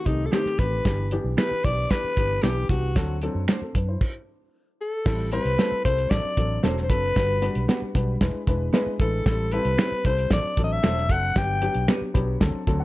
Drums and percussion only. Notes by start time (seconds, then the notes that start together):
0.06 kick, closed hi-hat
0.33 finger snap, snare, closed hi-hat
0.46 snare
0.59 kick, closed hi-hat
0.85 kick, snare, closed hi-hat
1.11 closed hi-hat
1.38 finger snap, snare, closed hi-hat
1.64 kick, closed hi-hat
1.91 kick, snare, closed hi-hat
2.17 kick, closed hi-hat
2.43 finger snap, snare, closed hi-hat
2.69 kick, closed hi-hat
2.96 kick, snare, closed hi-hat
3.21 closed hi-hat
3.48 finger snap, snare, closed hi-hat
3.75 kick, closed hi-hat
4.01 kick, crash
5.06 kick, snare, crash
5.32 closed hi-hat
5.45 closed hi-hat
5.59 snare, closed hi-hat
5.85 kick, closed hi-hat
5.98 closed hi-hat
6.11 kick, snare, closed hi-hat
6.37 kick, closed hi-hat
6.63 snare, closed hi-hat
6.77 snare
6.90 kick, closed hi-hat
7.16 kick, snare, closed hi-hat
7.42 closed hi-hat
7.55 closed hi-hat
7.69 snare, closed hi-hat
7.95 kick, closed hi-hat
8.21 kick, snare, closed hi-hat
8.47 kick, closed hi-hat
8.74 snare, closed hi-hat
9.00 kick, closed hi-hat
9.26 kick, snare, closed hi-hat
9.52 closed hi-hat
9.65 closed hi-hat
9.79 finger snap, snare, closed hi-hat
10.05 kick, closed hi-hat
10.18 closed hi-hat
10.31 kick, snare, closed hi-hat
10.57 kick, closed hi-hat
10.84 finger snap, snare, closed hi-hat
10.97 snare
11.09 kick, closed hi-hat
11.36 kick, snare, closed hi-hat
11.62 closed hi-hat
11.74 closed hi-hat
11.88 finger snap, snare, closed hi-hat
12.15 kick, closed hi-hat
12.41 kick, snare, closed hi-hat
12.67 kick, closed hi-hat